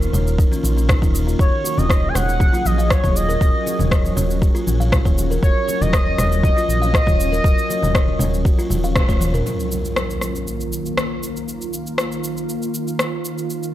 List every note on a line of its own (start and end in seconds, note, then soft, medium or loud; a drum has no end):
0.00 1.36 D#3 medium
0.00 1.36 A#3 medium
0.00 1.36 F4 medium
0.00 muted conga soft
0.00 high conga medium
0.00 cabasa soft
0.13 0.47 D#1 medium
0.13 0.26 C#5 medium
0.13 low conga loud
0.13 cabasa medium
0.27 cabasa soft
0.38 0.50 D#4 medium
0.38 kick loud
0.38 muted conga soft
0.38 cabasa medium
0.52 0.62 C#4 loud
0.52 high conga medium
0.52 cabasa soft
0.63 0.98 A#1 medium
0.63 high conga medium
0.63 cabasa medium
0.77 0.88 C#4 medium
0.77 muted conga soft
0.77 cabasa soft
0.89 1.01 D#4 medium
0.89 kick loud
0.89 cross-stick loud
0.89 low conga loud
0.89 cabasa medium
1.02 1.35 D#1 medium
1.02 1.13 D#4 medium
1.02 kick medium
1.02 high conga medium
1.02 cabasa soft
1.14 1.21 D#4 medium
1.14 cabasa loud
1.27 1.38 F4 medium
1.27 muted conga soft
1.27 cabasa soft
1.39 1.50 D#1 loud
1.39 9.42 F#3 medium
1.39 9.42 C#4 medium
1.39 1.52 F#4 medium
1.39 5.39 G#4 medium
1.39 1.79 C#5 loud
1.39 kick loud
1.39 cabasa medium
1.64 1.76 F#4 medium
1.64 muted conga medium
1.64 cabasa medium
1.77 2.11 D#1 medium
1.77 2.10 D#5 loud
1.77 high conga medium
1.77 low conga medium
1.77 cabasa soft
1.89 2.01 C#5 medium
1.89 kick loud
1.89 cross-stick medium
1.89 cabasa medium
2.03 muted conga soft
2.03 high conga medium
2.08 2.16 G#5 medium
2.15 2.49 D#1 medium
2.15 2.27 C#5 medium
2.15 2.67 F#5 loud
2.15 cross-stick medium
2.15 low conga loud
2.15 cabasa medium
2.29 cabasa soft
2.40 2.52 F#4 medium
2.40 kick loud
2.40 muted conga soft
2.40 high conga medium
2.40 low conga medium
2.40 cabasa medium
2.53 2.64 F4 loud
2.53 cabasa soft
2.65 2.99 A#1 medium
2.65 2.92 D#5 loud
2.65 high conga loud
2.65 cabasa medium
2.78 2.89 F5 medium
2.78 muted conga soft
2.78 cabasa soft
2.90 3.15 C#5 medium
2.90 kick loud
2.90 cross-stick loud
2.90 cabasa medium
3.03 3.37 D#1 medium
3.03 3.15 C#5 medium
3.03 kick medium
3.03 high conga medium
3.03 low conga medium
3.03 cabasa soft
3.16 4.13 D#5 loud
3.16 cabasa medium
3.29 3.40 A#4 medium
3.29 muted conga soft
3.29 cabasa soft
3.41 3.51 D#1 loud
3.41 3.53 F#4 medium
3.41 kick loud
3.41 cabasa soft
3.66 3.78 F#4 medium
3.66 muted conga medium
3.66 cabasa medium
3.79 4.13 D#1 medium
3.79 high conga medium
3.79 low conga medium
3.79 cabasa soft
3.91 4.03 C#5 medium
3.91 kick loud
3.91 cross-stick loud
3.91 cabasa soft
4.05 muted conga soft
4.05 high conga medium
4.05 cabasa soft
4.17 4.51 D#1 medium
4.17 4.29 C#5 medium
4.17 low conga loud
4.17 cabasa medium
4.30 cabasa soft
4.42 4.54 F#4 medium
4.42 kick loud
4.42 muted conga medium
4.42 cabasa medium
4.55 4.66 F4 loud
4.55 cabasa soft
4.67 5.01 A#1 medium
4.67 high conga medium
4.67 cabasa medium
4.80 4.91 F5 medium
4.80 muted conga soft
4.80 cabasa soft
4.92 kick loud
4.92 cross-stick loud
4.92 low conga loud
4.92 cabasa medium
5.05 5.39 D#1 medium
5.05 5.16 C#5 medium
5.05 kick medium
5.05 high conga medium
5.05 cabasa soft
5.18 cabasa medium
5.30 5.42 A#4 medium
5.30 muted conga soft
5.30 cabasa soft
5.42 5.53 D#1 loud
5.42 5.55 F#4 medium
5.42 5.82 C#5 loud
5.42 kick loud
5.42 cabasa soft
5.68 5.80 F#4 medium
5.68 muted conga medium
5.68 cabasa medium
5.81 6.14 D#1 medium
5.81 6.43 D#5 loud
5.81 high conga medium
5.81 low conga medium
5.81 cabasa soft
5.93 6.05 C#5 medium
5.93 kick loud
5.93 cross-stick loud
5.93 cabasa soft
6.06 muted conga soft
6.06 high conga medium
6.18 6.52 D#1 medium
6.18 6.30 C#5 medium
6.18 cross-stick medium
6.18 low conga loud
6.18 cabasa medium
6.32 cabasa soft
6.43 6.55 F#4 medium
6.43 8.92 D#5 loud
6.43 kick loud
6.43 muted conga medium
6.43 high conga medium
6.43 low conga loud
6.43 cabasa soft
6.57 6.68 F4 loud
6.57 cabasa soft
6.69 7.03 A#1 medium
6.69 high conga medium
6.69 cabasa medium
6.82 6.93 F5 medium
6.82 muted conga soft
6.82 cabasa soft
6.94 kick loud
6.94 cross-stick loud
6.94 cabasa medium
7.06 7.40 D#1 medium
7.06 7.18 C#5 medium
7.06 kick medium
7.06 high conga medium
7.06 low conga medium
7.06 cabasa soft
7.20 cabasa medium
7.32 7.43 A#4 medium
7.32 muted conga medium
7.32 cabasa soft
7.44 7.55 D#1 loud
7.44 7.57 F#4 medium
7.44 kick loud
7.44 cabasa medium
7.58 cabasa soft
7.70 7.81 F#4 medium
7.70 muted conga medium
7.70 cabasa medium
7.82 8.16 D#1 medium
7.82 high conga medium
7.82 low conga medium
7.82 cabasa soft
7.95 8.07 C#5 medium
7.95 kick loud
7.95 cross-stick loud
7.95 cabasa soft
8.07 muted conga soft
8.07 high conga medium
8.19 8.54 D#1 medium
8.19 8.32 C#5 medium
8.19 low conga loud
8.19 cabasa medium
8.34 cabasa soft
8.45 8.57 F#4 medium
8.45 kick loud
8.45 muted conga medium
8.45 cabasa medium
8.58 8.69 F4 loud
8.58 high conga medium
8.58 cabasa soft
8.70 9.04 D#1 medium
8.70 high conga medium
8.70 low conga medium
8.70 cabasa medium
8.83 8.95 F5 medium
8.83 muted conga soft
8.83 cabasa soft
8.96 kick loud
8.96 cross-stick loud
8.96 high tom medium
8.96 low conga loud
8.96 cabasa medium
9.08 9.42 D#1 medium
9.08 9.20 C#5 medium
9.08 kick medium
9.08 high tom medium
9.08 high conga medium
9.08 cabasa soft
9.21 mid tom medium
9.21 cabasa medium
9.34 9.45 A#4 medium
9.34 mid tom medium
9.34 muted conga medium
9.34 cabasa soft
9.46 13.74 D#3 medium
9.46 13.46 A#3 medium
9.46 13.74 F4 medium
9.46 impact medium
9.46 cabasa soft
9.60 cabasa soft
9.72 cabasa medium
9.85 cabasa soft
9.96 cross-stick loud
9.96 cabasa soft
10.10 cabasa soft
10.21 cross-stick medium
10.21 cabasa medium
10.36 cabasa soft
10.47 cabasa soft
10.61 cabasa soft
10.73 cabasa medium
10.86 cabasa soft
10.98 cross-stick loud
10.98 cabasa soft
11.23 cabasa medium
11.36 cabasa soft
11.48 cabasa soft
11.61 cabasa soft
11.73 cabasa medium
11.87 cabasa soft
11.98 cross-stick loud
11.98 cabasa soft
12.12 cabasa soft
12.24 cabasa medium
12.37 cabasa soft
12.49 cabasa medium
12.62 cabasa soft
12.74 cabasa medium
12.88 cabasa soft
12.99 cross-stick loud
12.99 cabasa medium
13.25 cabasa medium
13.38 cabasa soft
13.50 13.74 G#3 medium
13.50 cabasa medium
13.63 cabasa soft